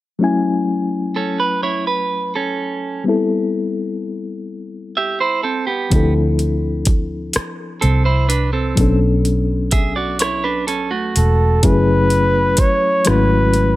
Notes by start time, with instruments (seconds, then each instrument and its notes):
0.19 reed electric piano F#3 A3 C#4 E4
0.24 reed electric piano G#5
1.16 clean electric guitar C#4 A4
1.40 clean electric guitar B4
1.63 clean electric guitar E4 C#5
1.87 clean electric guitar B4
2.36 clean electric guitar C#4 A4
3.04 reed electric piano G3 B3 C4 E4
3.09 reed electric piano A4
4.97 clean electric guitar G4 E5
5.20 clean electric guitar E4 C5
5.43 clean electric guitar C4 A4
5.67 clean electric guitar B3 G4
5.90 fingered electric bass D2, reed electric piano F3 C4 D4 E4, kick, closed hi-hat
5.96 reed electric piano A4
6.39 closed hi-hat
6.85 kick, closed hi-hat
7.33 muted fingered electric bass stroke, cross-stick, closed hi-hat
7.81 fingered electric bass C2, clean electric guitar C4 A4, closed hi-hat
8.05 clean electric guitar E4 C5
8.29 clean electric guitar D4 B4, closed hi-hat
8.53 clean electric guitar C4 A4
8.75 fingered electric bass B1, reed electric piano F#3 B3 C#4, kick, closed hi-hat
8.79 reed electric piano D4 A4
9.25 closed hi-hat
9.71 clean electric guitar G#4 E5, kick, closed hi-hat
9.96 clean electric guitar F#4 D5
10.19 clean electric guitar E4 C#5, cross-stick, closed hi-hat
10.44 clean electric guitar D4 B4
10.67 clean electric guitar C#4 A4, closed hi-hat
10.91 clean electric guitar A3 F#4
11.16 fingered electric bass E1, flugelhorn A4, closed hi-hat
11.63 fingered electric bass F#1, reed electric piano F#3 A3 C#4 E4 G#4, flugelhorn B4, kick, closed hi-hat
12.10 closed hi-hat
12.57 flugelhorn C#5, muted fingered electric bass stroke, kick, closed hi-hat
13.05 fingered electric bass G#1, reed electric piano F#3 G#3 C#4 E4 F#4, flugelhorn B4, cross-stick, closed hi-hat
13.13 reed electric piano A3
13.54 closed hi-hat